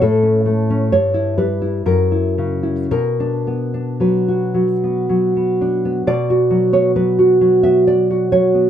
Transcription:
\new Staff \with { instrumentName = "Nylon-string guitar" } { \time 3/4 \key b \minor \tempo 4 = 64 << { a'4 cis''8 b'8 ais'4 | ais'4 b'4. r8 | d''8. cis''16 b'8. e''16 d''8 cis''8 | } \\ { a,16 cis'16 a16 cis'16 g,16 e'16 g16 e'16 fis,16 e'16 cis16 e'16 | b,16 d'16 b16 d'16 fis16 fis'16 fis16 b16 fis16 b16 d'16 b16 | b,16 fis'16 fis16 b16 fis16 fis'16 fis16 b8 fis'16 fis16 b16 | } >> }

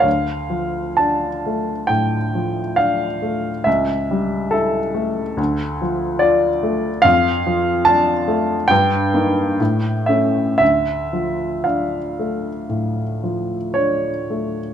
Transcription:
<<
  \new Staff \with { instrumentName = "Grand piano" } { \time 4/4 \key d \minor \tempo 4 = 68 f''4 a''4 g''4 f''4 | e''4 a'4. r8 d''4 | f''4 a''4 g''4. e''8 | e''4 f''2 cis''4 | }
  \new Staff \with { instrumentName = "Grand piano" } { \time 4/4 \key d \minor d,8 f8 d'8 a8 a,8 f8 d'8 a8 | cis,8 g8 e'8 a8 d,8 f8 f'8 a8 | f,8 f8 d'8 a8 g,8 <bes ees'>8 a,8 <a cis'>8 | d,8 f8 d'8 a8 a,8 f8 d'8 a8 | }
>>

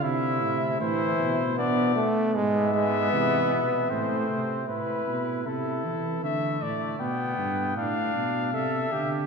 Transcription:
<<
  \new Staff \with { instrumentName = "Trumpet" } { \time 3/4 \key a \phrygian \tempo 4 = 78 e''4 c''4 d''8 r8 | e''2 c''4 | b'4 a'4 e''8 d''8 | g''4 f''4 e''4 | }
  \new Staff \with { instrumentName = "Trumpet" } { \time 3/4 \key a \phrygian e'4 e'4 d'8 r8 | b2 c'4 | e'4 e'4 a4 | b4 d'4 a'8 g'8 | }
  \new Staff \with { instrumentName = "Trombone" } { \clef bass \time 3/4 \key a \phrygian c4 e4 b8 a8 | gis8 gis8 e8 r8 a4 | r2. | r2. | }
  \new Staff \with { instrumentName = "Tuba" } { \clef bass \time 3/4 \key a \phrygian c8 a,8 a,8 b,4 r8 | gis,4 c8 b,8 a,8 c8 | a,8 b,8 c8 e8 d8 a,8 | b,8 g,8 a,8 b,8 c8 d8 | }
>>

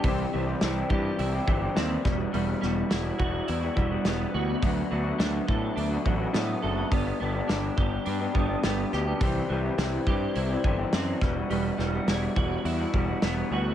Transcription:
<<
  \new Staff \with { instrumentName = "Overdriven electric guitar" } { \time 4/4 \key e \minor \tempo 4 = 105 e8 e8 e'8 g'8 e'8 e8 c'8 g8 | g8 g8 e'8 fis'8 e'8 g8 b8 fis'8 | fis8 fis8 d'8 a'8 d'8 fis8 b8 a'8 | b8 b8 d'8 g'8 d'8 b8 b8 g'8 |
e8 e8 e'8 g'8 e'8 e8 c'8 g8 | g8 g8 e'8 fis'8 e'8 g8 b8 fis'8 | }
  \new Staff \with { instrumentName = "Clean electric guitar" } { \time 4/4 \key e \minor <c e g c' g'>8 <e g c' g'>16 <g c' g'>16 <c e g c' g'>8 <e g c' g'>8. <g c' g'>16 <e g c' g'>16 <g c' g'>16 <c e g c' g'>8 <e, b, e g b fis'>16 <e g b fis'>16 | <e, b, e g b fis'>8 <e g b fis'>16 <e g b fis'>16 <e, b, e g b fis'>8 <e g b fis'>8. <e g b fis'>16 <e g b fis'>16 <e g b fis'>16 <e, b, e g b fis'>8 <e g b fis'>16 <e g b fis'>16 | <d a b fis'>8 <d a b fis'>16 <a b fis'>16 <d a b fis'>8 <d a b fis'>8. <a b fis'>16 <d a b fis'>16 <a b fis'>16 <d a b fis'>8 <d a b fis'>16 <a b fis'>16 | <g, d g b d' g'>8 <g b d' g'>16 <g b d' g'>16 <g, d g b d' g'>8 <g b d' g'>8. <g b d' g'>16 <g b d' g'>16 <g b d' g'>16 <g, d g b d' g'>8 <g b d' g'>16 <g b d' g'>16 |
<c e g c' g'>8 <e g c' g'>16 <g c' g'>16 <c e g c' g'>8 <e g c' g'>8. <g c' g'>16 <e g c' g'>16 <g c' g'>16 <c e g c' g'>8 <e g b fis'>16 <g b fis'>16 | <e g b fis'>8 <e g b fis'>16 <g b fis'>16 <e g b fis'>8 <e g b fis'>8. <g b fis'>16 <e g b fis'>16 <g b fis'>16 <e g b fis'>8 <e g b fis'>16 <g b fis'>16 | }
  \new Staff \with { instrumentName = "Picked electric bass" } { \clef bass \time 4/4 \key e \minor c,8 c,8 c,8 g,8 c,8 g,,8 ees,8 e,,8 | e,,8 e,,8 e,,8 e,,8 e,8 e,,8 e,,8 d,8 | d,8 d,8 d,8 a,8 d,8 a,,8 a,8 fis,,8 | g,,8 g,,8 g,,8 g,,8 g,8 g,,8 g,,8 d,8 |
c,8 c,8 c,8 g,8 c,8 g,,8 fis,8 e,,8 | e,,8 e,,8 e,,8 e,,8 e,8 e,,8 e,,8 d,8 | }
  \new DrumStaff \with { instrumentName = "Drums" } \drummode { \time 4/4 <hho bd>4 <hho sn>8 bd8 hho8 bd8 <hho sn>8 <bd sn>8 | hho8 sn8 <hho sn>8 bd8 hho8 bd8 <hho sn>4 | <hho bd>4 <hho sn>8 bd8 hho8 bd8 <hho sn>4 | <hho bd>4 <hho sn>8 bd8 hho8 bd8 <hho sn>8 sn8 |
<hho bd>4 <hho sn>8 bd8 hho8 bd8 <hho sn>8 <bd sn>8 | hho8 sn8 <hho sn>8 bd8 hho8 bd8 <hho sn>4 | }
>>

